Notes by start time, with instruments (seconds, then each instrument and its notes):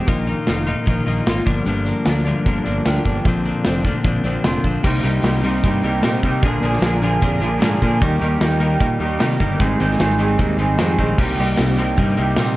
Already playing: overdriven electric guitar F3
0.07 fingered electric bass A#1, clean electric guitar A#2 D#3 A#3 D#4 F4, kick, closed hi-hat
0.27 clean electric guitar A#3 D#4 F4, closed hi-hat
0.47 fingered electric bass F1, clean electric guitar D#3 A#3 D#4 F4, snare, closed hi-hat, tambourine
0.67 clean electric guitar A#2 D#3 A#3 D#4 F4, closed hi-hat
0.86 fingered electric bass A#1, clean electric guitar D#3 A#3 D#4 F4, kick, closed hi-hat
1.06 fingered electric bass A#1, clean electric guitar A#2 D#3 A#3 D#4 F4, closed hi-hat
1.26 fingered electric bass G#1, clean electric guitar D#3 A#3 D#4 F4, snare, closed hi-hat, tambourine
1.46 fingered electric bass G1, clean electric guitar G2 D3 F3 A#3 D4, kick, closed hi-hat
1.65 fingered electric bass G1, clean electric guitar G2 D3 F3 A#3 D4, closed hi-hat
1.85 clean electric guitar F3 A#3 D4, closed hi-hat
2.05 fingered electric bass D2, clean electric guitar D3 F3 A#3 D4, snare, closed hi-hat, tambourine
2.25 clean electric guitar G2 D3 F3 A#3 D4, closed hi-hat
2.45 fingered electric bass G1, clean electric guitar D3 F3 A#3 D4, kick, closed hi-hat
2.64 fingered electric bass G1, clean electric guitar G2 D3 F3 A#3 D4, closed hi-hat
2.85 fingered electric bass D2, clean electric guitar D3 F3 A#3 D4, overdriven electric guitar G4, snare, closed hi-hat, tambourine
3.04 fingered electric bass G1, clean electric guitar A#3 D4, kick, closed hi-hat
3.08 clean electric guitar F3
3.25 fingered electric bass A#1, clean electric guitar A#2 D3 F3 C4 D4, kick, closed hi-hat
3.45 overdriven electric guitar A#3, clean electric guitar C4 D4, closed hi-hat
3.49 clean electric guitar F3
3.65 fingered electric bass F1, clean electric guitar D3 F3 C4 D4, snare, closed hi-hat, tambourine
3.84 clean electric guitar D3 F3 C4 D4, overdriven electric guitar A#3, kick, closed hi-hat
3.89 clean electric guitar A#2
4.04 fingered electric bass A#1, clean electric guitar D3 F3 C4 D4, kick, closed hi-hat
4.24 fingered electric bass A#1, clean electric guitar A#2 D3 F3 C4 D4, closed hi-hat
4.44 fingered electric bass F1, clean electric guitar D3 F3 C4 D4, overdriven electric guitar F4, snare, closed hi-hat, tambourine
4.63 fingered electric bass A#1, clean electric guitar F3 C4 D4, kick, closed hi-hat
4.83 fingered electric bass C2, clean electric guitar C3 G3 A#3 D#4, overdriven electric guitar C4 G4, kick, crash
5.03 fingered electric bass C2, clean electric guitar C3 G3 A#3 D#4, overdriven electric guitar C4 G4, closed hi-hat
5.23 fingered electric bass C2, clean electric guitar C3 G3 A#3 D#4, overdriven electric guitar C4 G4, snare, closed hi-hat, tambourine
5.43 clean electric guitar C3 G3 A#3 D#4, overdriven electric guitar C4 G4, closed hi-hat
5.64 fingered electric bass G2, clean electric guitar C3 G3 A#3 D#4, overdriven electric guitar C4 G4, kick, closed hi-hat
5.83 fingered electric bass C2, clean electric guitar C3 G3 A#3 D#4, overdriven electric guitar C4 G4, closed hi-hat
6.02 fingered electric bass A#2, clean electric guitar C3 G3 A#3 D#4, overdriven electric guitar C4 G4, snare, closed hi-hat, tambourine
6.23 fingered electric bass C3, clean electric guitar C3 G3 A#3 D#4, overdriven electric guitar C4 G4, kick, closed hi-hat
6.42 fingered electric bass A#1, clean electric guitar A#2 D3 F3 A#3 D4 G#4, kick, closed hi-hat
6.62 fingered electric bass A#1, clean electric guitar A#2 D3 F3 A#3 D4 G#4, closed hi-hat
6.73 snare
6.82 fingered electric bass A#1, clean electric guitar A#2 D3 F3 A#3 D4 G#4, snare, closed hi-hat, tambourine
7.02 clean electric guitar A#2 D3 F3 A#3 D4 G#4, closed hi-hat
7.20 fingered electric bass F2, clean electric guitar A#2 D3 F3 A#3 D4 G#4, kick, closed hi-hat
7.40 fingered electric bass A#1, clean electric guitar A#2 D3 F3 A#3 D4 G#4, closed hi-hat
7.59 fingered electric bass G#2, clean electric guitar A#2 D3 F3 A#3 D4 G#4, snare, closed hi-hat, tambourine
7.81 clean electric guitar A#2 D3 F3 A#3 D4 G#4, fingered electric bass A#2, kick, closed hi-hat
8.01 fingered electric bass D#2, clean electric guitar D#3 G3 A#3 D#4, overdriven electric guitar G4, kick, closed hi-hat
8.20 fingered electric bass D#2, clean electric guitar D#3 G3 A#3 D#4, overdriven electric guitar G4, closed hi-hat
8.40 fingered electric bass D#2, clean electric guitar D#3 G3 A#3 D#4, overdriven electric guitar G4, snare, closed hi-hat, tambourine
8.60 clean electric guitar D#3 G3 A#3 D#4, overdriven electric guitar G4, closed hi-hat
8.79 fingered electric bass A#2, clean electric guitar D#3 G3 A#3 D#4, overdriven electric guitar G4, kick, closed hi-hat
8.99 fingered electric bass D#2, clean electric guitar D#3 G3 A#3 D#4, overdriven electric guitar G4, closed hi-hat
9.19 fingered electric bass C3, clean electric guitar D#3 G3 A#3 D#4, overdriven electric guitar G4, snare, closed hi-hat, tambourine
9.40 fingered electric bass G1, clean electric guitar D#3 G3 A#3 D#4, overdriven electric guitar G4, kick, closed hi-hat
9.58 fingered electric bass G#1, clean electric guitar G#2 D#3 G3 C4 D#4, overdriven electric guitar G#3 G#4, kick, closed hi-hat
9.79 fingered electric bass G#1, clean electric guitar G#2 D#3 G3 C4 D#4, overdriven electric guitar G#3 G#4, closed hi-hat
9.91 snare
9.99 fingered electric bass G#1, clean electric guitar G#2 D#3 G3 C4 D#4, overdriven electric guitar G#3 G#4, snare, closed hi-hat, tambourine
10.18 clean electric guitar G#2 D#3 G3 C4 D#4, overdriven electric guitar G#3 G#4, closed hi-hat
10.38 fingered electric bass D#2, clean electric guitar G#2 D#3 G3 C4 D#4, overdriven electric guitar G#3 G#4, kick, closed hi-hat
10.58 fingered electric bass G#1, clean electric guitar G#2 D#3 G3 C4 D#4, overdriven electric guitar G#3 G#4, closed hi-hat
10.78 fingered electric bass F2, clean electric guitar G#2 D#3 G3 C4 D#4, overdriven electric guitar G#3 G#4, snare, closed hi-hat, tambourine
10.98 fingered electric bass A#1, clean electric guitar G#2 D#3 G3 C4 D#4, overdriven electric guitar G#3 G#4, kick, closed hi-hat
11.18 fingered electric bass C2, clean electric guitar C3 G3 A#3 D#4, overdriven electric guitar C4 G4, kick, crash
11.38 fingered electric bass C2, clean electric guitar C3 G3 A#3 D#4, overdriven electric guitar C4 G4, closed hi-hat
11.57 fingered electric bass C2, clean electric guitar C3 G3 A#3 D#4, overdriven electric guitar C4 G4, snare, closed hi-hat, tambourine
11.77 clean electric guitar C3 G3 A#3 D#4, overdriven electric guitar C4 G4, closed hi-hat
11.97 fingered electric bass G2, clean electric guitar C3 G3 A#3 D#4, overdriven electric guitar C4 G4, kick, closed hi-hat
12.16 fingered electric bass C2, clean electric guitar C3 G3 A#3 D#4, overdriven electric guitar C4 G4, closed hi-hat
12.36 fingered electric bass A#2, clean electric guitar C3 G3 A#3 D#4, overdriven electric guitar C4 G4, snare, closed hi-hat, tambourine